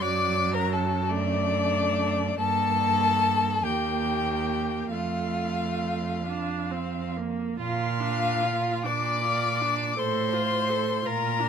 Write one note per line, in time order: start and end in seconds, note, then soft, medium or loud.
0.01 2.35 F#2 medium
0.01 1.12 F#3 soft
0.01 0.55 D5 medium
0.01 0.54 D6 medium
0.54 0.75 A#4 medium
0.54 0.74 A#5 medium
0.73 1.12 A4 medium
0.73 1.11 A5 medium
1.09 2.39 A3 soft
1.09 2.39 D4 medium
1.09 2.38 D5 medium
2.39 3.65 G2 soft
2.39 3.59 A#3 soft
2.39 3.65 A4 medium
2.39 3.66 A5 medium
3.63 4.91 D#2 soft
3.63 4.93 A#3 soft
3.63 4.92 G4 medium
3.63 4.91 G5 medium
4.91 7.33 F2 soft
4.91 6.17 A3 soft
4.91 7.14 F4 medium
4.91 7.13 F5 medium
6.26 6.72 D4 soft
6.71 7.18 C4 soft
7.16 7.58 A#3 soft
7.59 8.70 A#2 medium
7.59 8.02 F4 soft
7.59 8.87 F4 medium
7.59 8.81 F5 medium
8.00 8.44 D4 soft
8.43 8.85 F4 soft
8.84 9.85 A#2 medium
8.84 9.22 D4 soft
8.84 9.98 D5 medium
8.84 10.00 D6 medium
9.23 9.62 F4 soft
9.61 9.96 D4 soft
9.97 10.92 A2 medium
9.97 10.34 A4 soft
9.97 11.07 C5 medium
9.97 11.08 C6 medium
10.33 10.70 F4 soft
10.69 11.03 A4 soft
11.04 11.49 A#2 medium
11.04 11.41 F4 soft
11.04 11.49 A#4 medium
11.04 11.49 A#5 medium
11.40 11.49 D4 soft